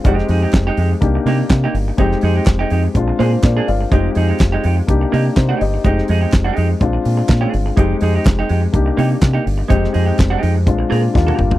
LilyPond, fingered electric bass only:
\new Staff \with { instrumentName = "Fingered electric bass" } { \clef bass \time 4/4 \key f \dorian \tempo 4 = 124 f,,8 f,8 f,,8 f,8 c,8 c8 c8 g,,8 | f,,8 f,8 f,,8 f,8 bes,,8 bes,8 bes,8 g,,8 | f,,8 f,8 f,,8 f,8 c,8 c8 c8 g,,8 | f,,8 f,8 f,,8 f,8 bes,,8 bes,8 bes,8 g,,8 |
f,,8 f,8 f,,8 f,8 c,8 c8 c8 g,,8 | f,,8 f,8 f,,8 f,8 bes,,8 bes,8 ees,8 g,,8 | }